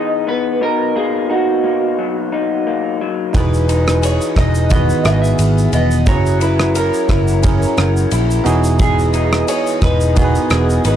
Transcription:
Already playing: clean electric guitar E3 B3 D#4 G#4 D#5
0.27 clean electric guitar B3 B4
0.61 clean electric guitar B2 D#4 A#4
0.95 clean electric guitar A#3 G#4
1.30 clean electric guitar D#4 F#4
1.64 clean electric guitar A#3
1.99 clean electric guitar F#3
2.32 clean electric guitar D#4
2.67 clean electric guitar A#3
3.01 clean electric guitar F#3
3.33 picked electric bass E1, clean electric guitar E3 G#4 B4, tine electric piano D#4 F#4 G#4 B4, ambient pad B4 G#5 D#6, kick, ride, shaker
3.54 shaker
3.69 clean electric guitar D#4, ride, shaker
3.88 cross-stick, shaker
4.02 clean electric guitar G#4 C#5, ride, shaker
4.21 shaker
4.36 picked electric bass E1, clean electric guitar D#4 D#5, kick, cross-stick, ride, shaker
4.55 shaker
4.70 tine electric piano D#3 F#4 G#4 B4, clean electric guitar B3 D#5, kick, ride, shaker
4.90 shaker
5.05 picked electric bass G#1, clean electric guitar G#4 E5, cross-stick, ride, shaker
5.13 clean electric guitar D#5
5.22 clean electric guitar E5, shaker
5.39 picked electric bass G#1, ride, shaker
5.58 shaker
5.73 picked electric bass E1, clean electric guitar B3 D#5, ride, shaker
5.91 shaker
6.06 picked electric bass F#1, clean electric guitar F#3 C#5, tine electric piano C#4 E4 G#4 A#5, ambient pad C#5 F#5 A#5, kick, ride, shaker
6.26 shaker
6.41 clean electric guitar E4 B4, ride, shaker
6.59 cross-stick, shaker
6.75 clean electric guitar A#4, ride, shaker
6.94 shaker
7.09 picked electric bass F#1, clean electric guitar E4, kick, cross-stick, ride, shaker
7.28 shaker
7.42 tine electric piano C#4 E4 G#4 A#4, clean electric guitar C#4, kick, ride, shaker
7.62 shaker
7.77 picked electric bass F#1, clean electric guitar A#4, cross-stick, ride, shaker
7.97 shaker
8.11 picked electric bass A#1, clean electric guitar E4, ride, shaker
8.31 shaker
8.44 picked electric bass E1, clean electric guitar E3, tine electric piano B3 D#4 F#4 G#4, ambient pad G#4 D#5 G#5 D#6, ride, shaker
8.64 shaker
8.79 clean electric guitar E3 G#4, kick, ride, shaker
8.99 shaker
9.14 clean electric guitar D#4, ride, shaker
9.33 cross-stick, shaker
9.48 clean electric guitar G#4 C#5, ride, shaker
9.67 shaker
9.82 picked electric bass E1, clean electric guitar D#4 B4, kick, cross-stick, ride, shaker
10.01 shaker
10.15 tine electric piano B3 D#4 F#4 A#4, clean electric guitar B3 G#4, kick, ride, shaker
10.24 tine electric piano B4
10.35 shaker
10.50 picked electric bass E1, clean electric guitar G#4, cross-stick, ride, shaker
10.70 shaker
10.85 picked electric bass G#1, clean electric guitar D#4 B4, ride, shaker

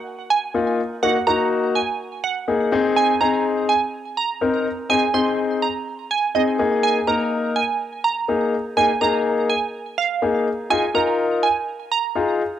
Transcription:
0.30 synth pluck G#5
0.54 grand piano A#3 D#4 F4
1.03 grand piano A#3 D#4 F#4, synth pluck F#5
1.27 grand piano A#3 D#4 F#4, synth pluck A#5
1.75 synth pluck G#5
2.24 synth pluck F#5
2.48 grand piano A#3 D#4 G#4
2.72 grand piano C4 D#4 G#4
2.96 synth pluck G#5
3.20 grand piano C4 D#4 G#4, synth pluck A#5
3.69 synth pluck G#5
4.17 synth pluck A#5
4.41 grand piano C4 D#4 A#4
4.90 grand piano C4 D#4 G#4, synth pluck G#5
5.14 grand piano C4 D#4 G#4, synth pluck C6
5.62 synth pluck A#5
6.11 synth pluck G#5
6.35 grand piano C4 D#4 G#4, synth pluck D#5
6.59 grand piano A#3 D#4 G#4
6.83 synth pluck G#5
7.07 grand piano A#3 D#4 A#4, synth pluck A#5
7.56 synth pluck G#5
8.04 synth pluck A#5
8.28 grand piano A#3 D#4 G#4
8.77 grand piano A#3 D#4 G#4, synth pluck G#5
9.01 grand piano A#3 D#4 G#4, synth pluck A#5
9.50 synth pluck G#5
9.98 synth pluck F5
10.22 grand piano A#3 D#4 G#4
10.70 grand piano D#4 F4 G#4, synth pluck G#5
10.95 grand piano D#4 F4 A#4, synth pluck A#5
11.43 synth pluck G#5
11.92 synth pluck A#5
12.15 grand piano D#4 F4 G#4

